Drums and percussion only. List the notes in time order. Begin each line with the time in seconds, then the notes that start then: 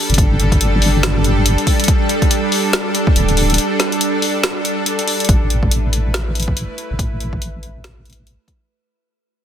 0.10 closed hi-hat
0.14 kick, closed hi-hat
0.18 closed hi-hat
0.40 closed hi-hat
0.52 kick, closed hi-hat
0.61 closed hi-hat
0.82 open hi-hat
1.03 snare, closed hi-hat
1.24 closed hi-hat
1.46 closed hi-hat
1.58 closed hi-hat
1.67 kick, open hi-hat
1.80 closed hi-hat
1.84 closed hi-hat
1.88 kick, closed hi-hat
2.09 closed hi-hat
2.22 kick, closed hi-hat
2.31 closed hi-hat
2.52 open hi-hat
2.73 snare, closed hi-hat
2.95 closed hi-hat
3.07 kick
3.16 closed hi-hat
3.29 closed hi-hat
3.37 open hi-hat
3.50 closed hi-hat
3.54 closed hi-hat
3.58 closed hi-hat
3.80 snare, closed hi-hat
3.92 closed hi-hat
4.01 closed hi-hat
4.22 open hi-hat
4.44 snare, closed hi-hat
4.65 closed hi-hat
4.86 closed hi-hat
4.99 closed hi-hat
5.08 open hi-hat
5.20 closed hi-hat
5.25 closed hi-hat
5.29 kick, closed hi-hat
5.50 closed hi-hat
5.63 kick
5.71 closed hi-hat
5.93 closed hi-hat
6.14 snare, closed hi-hat
6.35 closed hi-hat
6.40 closed hi-hat
6.43 closed hi-hat
6.48 kick
6.57 closed hi-hat
6.78 closed hi-hat
6.99 kick, closed hi-hat
7.20 closed hi-hat
7.33 kick
7.42 closed hi-hat
7.63 closed hi-hat
7.84 snare, closed hi-hat
8.05 closed hi-hat
8.10 closed hi-hat
8.13 closed hi-hat
8.27 closed hi-hat
8.48 kick, closed hi-hat